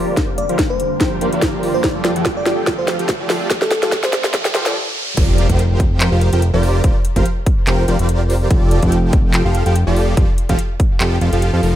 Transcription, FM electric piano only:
0, 0, Header, 1, 2, 480
1, 0, Start_track
1, 0, Key_signature, -1, "major"
1, 0, Tempo, 416667
1, 198, Time_signature, 4, 2, 24, 8
1, 13543, End_track
2, 0, Start_track
2, 0, Title_t, "FM electric piano"
2, 0, Program_c, 0, 5
2, 437, Note_on_c, 0, 74, 88
2, 653, Note_off_c, 0, 74, 0
2, 807, Note_on_c, 0, 72, 88
2, 1288, Note_off_c, 0, 72, 0
2, 2009, Note_on_c, 0, 72, 92
2, 2171, Note_off_c, 0, 72, 0
2, 2730, Note_on_c, 0, 74, 90
2, 2940, Note_off_c, 0, 74, 0
2, 3208, Note_on_c, 0, 72, 87
2, 3418, Note_off_c, 0, 72, 0
2, 4168, Note_on_c, 0, 69, 91
2, 4379, Note_off_c, 0, 69, 0
2, 4407, Note_on_c, 0, 69, 87
2, 4622, Note_off_c, 0, 69, 0
2, 4651, Note_on_c, 0, 72, 98
2, 5000, Note_off_c, 0, 72, 0
2, 13543, End_track
0, 0, End_of_file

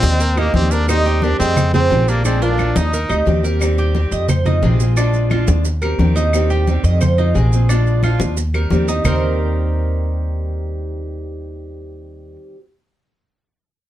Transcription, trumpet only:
0, 0, Header, 1, 2, 480
1, 0, Start_track
1, 0, Key_signature, -3, "major"
1, 0, Tempo, 340522
1, 1249, Time_signature, 4, 2, 24, 8
1, 19589, End_track
2, 0, Start_track
2, 0, Title_t, "Trumpet"
2, 0, Program_c, 0, 56
2, 0, Note_on_c, 0, 60, 119
2, 542, Note_on_c, 0, 58, 95
2, 564, Note_off_c, 0, 60, 0
2, 763, Note_off_c, 0, 58, 0
2, 772, Note_on_c, 0, 60, 105
2, 1004, Note_on_c, 0, 62, 101
2, 1025, Note_off_c, 0, 60, 0
2, 1240, Note_off_c, 0, 62, 0
2, 1249, Note_on_c, 0, 63, 100
2, 1741, Note_on_c, 0, 62, 97
2, 1762, Note_off_c, 0, 63, 0
2, 1956, Note_off_c, 0, 62, 0
2, 1965, Note_on_c, 0, 60, 100
2, 2414, Note_off_c, 0, 60, 0
2, 2451, Note_on_c, 0, 60, 104
2, 2937, Note_on_c, 0, 58, 94
2, 2958, Note_off_c, 0, 60, 0
2, 3168, Note_off_c, 0, 58, 0
2, 3177, Note_on_c, 0, 60, 89
2, 3419, Note_on_c, 0, 62, 102
2, 3440, Note_off_c, 0, 60, 0
2, 3885, Note_on_c, 0, 63, 90
2, 3906, Note_off_c, 0, 62, 0
2, 4609, Note_off_c, 0, 63, 0
2, 19589, End_track
0, 0, End_of_file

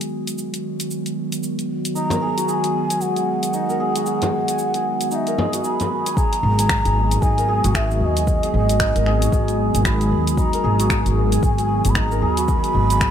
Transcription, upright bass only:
0, 0, Header, 1, 2, 480
1, 0, Start_track
1, 0, Key_signature, 5, "minor"
1, 0, Tempo, 526316
1, 1786, Time_signature, 4, 2, 24, 8
1, 11954, End_track
2, 0, Start_track
2, 0, Title_t, "Upright bass"
2, 0, Program_c, 0, 32
2, 5864, Note_on_c, 0, 32, 99
2, 6208, Note_off_c, 0, 32, 0
2, 6249, Note_on_c, 0, 32, 101
2, 6558, Note_off_c, 0, 32, 0
2, 6971, Note_on_c, 0, 32, 100
2, 7279, Note_off_c, 0, 32, 0
2, 7305, Note_on_c, 0, 39, 81
2, 7649, Note_off_c, 0, 39, 0
2, 7786, Note_on_c, 0, 32, 101
2, 8129, Note_off_c, 0, 32, 0
2, 8168, Note_on_c, 0, 32, 105
2, 8478, Note_off_c, 0, 32, 0
2, 8505, Note_on_c, 0, 32, 75
2, 8848, Note_off_c, 0, 32, 0
2, 8889, Note_on_c, 0, 32, 102
2, 9198, Note_off_c, 0, 32, 0
2, 9225, Note_on_c, 0, 39, 87
2, 9569, Note_off_c, 0, 39, 0
2, 9707, Note_on_c, 0, 32, 96
2, 10049, Note_off_c, 0, 32, 0
2, 10088, Note_on_c, 0, 32, 100
2, 10397, Note_off_c, 0, 32, 0
2, 10810, Note_on_c, 0, 32, 106
2, 11119, Note_off_c, 0, 32, 0
2, 11145, Note_on_c, 0, 39, 85
2, 11488, Note_off_c, 0, 39, 0
2, 11624, Note_on_c, 0, 32, 101
2, 11954, Note_off_c, 0, 32, 0
2, 11954, End_track
0, 0, End_of_file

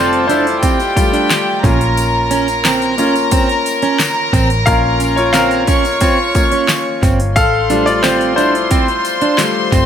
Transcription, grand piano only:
0, 0, Header, 1, 2, 480
1, 0, Start_track
1, 0, Tempo, 674157
1, 1406, Time_signature, 4, 2, 24, 8
1, 7019, End_track
2, 0, Start_track
2, 0, Title_t, "Grand piano"
2, 0, Program_c, 0, 0
2, 0, Control_c, 0, 64, 127
2, 0, Note_on_c, 0, 55, 54
2, 0, Note_on_c, 0, 57, 51
2, 0, Note_on_c, 0, 65, 67
2, 0, Note_on_c, 0, 69, 83
2, 0, Note_on_c, 0, 72, 84
2, 0, Note_on_c, 0, 74, 84
2, 0, Note_on_c, 0, 77, 107
2, 185, Note_off_c, 0, 72, 0
2, 191, Note_off_c, 0, 65, 0
2, 196, Note_on_c, 0, 72, 80
2, 213, Note_on_c, 0, 64, 62
2, 685, Note_off_c, 0, 55, 0
2, 685, Note_on_c, 0, 55, 51
2, 688, Note_off_c, 0, 57, 0
2, 688, Note_on_c, 0, 57, 44
2, 690, Note_on_c, 0, 65, 55
2, 901, Note_off_c, 0, 55, 0
2, 903, Note_off_c, 0, 57, 0
2, 904, Note_off_c, 0, 65, 0
2, 1133, Note_off_c, 0, 72, 0
2, 1141, Note_off_c, 0, 64, 0
2, 1164, Note_on_c, 0, 58, 53
2, 1167, Note_on_c, 0, 61, 50
2, 1173, Note_on_c, 0, 65, 61
2, 1174, Control_c, 0, 64, 0
2, 1176, Note_off_c, 0, 74, 0
2, 1177, Note_off_c, 0, 77, 0
2, 1178, Note_off_c, 0, 69, 0
2, 1291, Control_c, 0, 64, 127
2, 1484, Note_off_c, 0, 58, 0
2, 1486, Note_off_c, 0, 61, 0
2, 1489, Note_off_c, 0, 65, 0
2, 2119, Note_on_c, 0, 58, 49
2, 2123, Note_on_c, 0, 61, 45
2, 2126, Note_on_c, 0, 65, 51
2, 2338, Note_off_c, 0, 58, 0
2, 2340, Note_off_c, 0, 61, 0
2, 2342, Note_off_c, 0, 65, 0
2, 3316, Note_on_c, 0, 77, 101
2, 3321, Note_on_c, 0, 58, 56
2, 3325, Note_on_c, 0, 61, 54
2, 3330, Note_on_c, 0, 65, 65
2, 3330, Note_on_c, 0, 70, 86
2, 3643, Note_off_c, 0, 58, 0
2, 3645, Note_off_c, 0, 61, 0
2, 3647, Note_off_c, 0, 65, 0
2, 3655, Note_off_c, 0, 77, 0
2, 3663, Note_off_c, 0, 70, 0
2, 3676, Note_on_c, 0, 73, 83
2, 3691, Note_on_c, 0, 65, 65
2, 3792, Note_off_c, 0, 73, 0
2, 3793, Note_on_c, 0, 77, 96
2, 3800, Note_off_c, 0, 65, 0
2, 3809, Note_on_c, 0, 70, 73
2, 4259, Note_off_c, 0, 70, 0
2, 4278, Note_on_c, 0, 73, 76
2, 4292, Note_on_c, 0, 65, 62
2, 4294, Note_off_c, 0, 77, 0
2, 4516, Note_off_c, 0, 65, 0
2, 4523, Note_on_c, 0, 58, 49
2, 4525, Note_on_c, 0, 61, 44
2, 4527, Note_on_c, 0, 65, 53
2, 4733, Note_off_c, 0, 73, 0
2, 4740, Note_off_c, 0, 58, 0
2, 4741, Note_off_c, 0, 61, 0
2, 4742, Note_off_c, 0, 65, 0
2, 5239, Note_on_c, 0, 77, 107
2, 5248, Note_on_c, 0, 69, 79
2, 5254, Control_c, 0, 64, 0
2, 5367, Control_c, 0, 64, 127
2, 5482, Note_on_c, 0, 55, 55
2, 5486, Note_on_c, 0, 57, 50
2, 5490, Note_on_c, 0, 65, 60
2, 5581, Note_off_c, 0, 69, 0
2, 5595, Note_on_c, 0, 74, 94
2, 5598, Note_off_c, 0, 65, 0
2, 5609, Note_on_c, 0, 65, 72
2, 5613, Note_off_c, 0, 77, 0
2, 5715, Note_on_c, 0, 72, 86
2, 5717, Note_off_c, 0, 65, 0
2, 5724, Note_off_c, 0, 74, 0
2, 5728, Note_on_c, 0, 65, 69
2, 5942, Note_off_c, 0, 72, 0
2, 5949, Note_off_c, 0, 65, 0
2, 5952, Note_on_c, 0, 72, 90
2, 5968, Note_on_c, 0, 64, 61
2, 6174, Note_off_c, 0, 55, 0
2, 6177, Note_off_c, 0, 57, 0
2, 6677, Note_on_c, 0, 55, 48
2, 6681, Note_on_c, 0, 57, 44
2, 6684, Note_on_c, 0, 65, 50
2, 6890, Note_off_c, 0, 72, 0
2, 6896, Note_off_c, 0, 55, 0
2, 6897, Note_off_c, 0, 64, 0
2, 6898, Note_off_c, 0, 57, 0
2, 6900, Note_off_c, 0, 65, 0
2, 7019, End_track
0, 0, End_of_file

